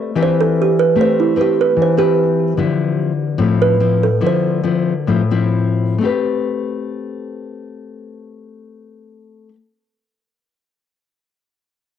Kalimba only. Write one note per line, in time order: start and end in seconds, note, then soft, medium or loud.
0.23 0.39 C5 medium
0.41 0.58 A4 medium
0.62 0.78 G4 medium
0.79 0.97 B4 medium
1.01 1.18 C5 medium
1.20 1.38 E4 medium
1.41 1.58 G4 medium
1.61 1.78 B4 medium
1.82 1.99 C5 medium
1.99 2.10 G4 medium
3.62 3.99 B4 medium
4.03 4.22 A4 medium
4.27 4.85 C5 medium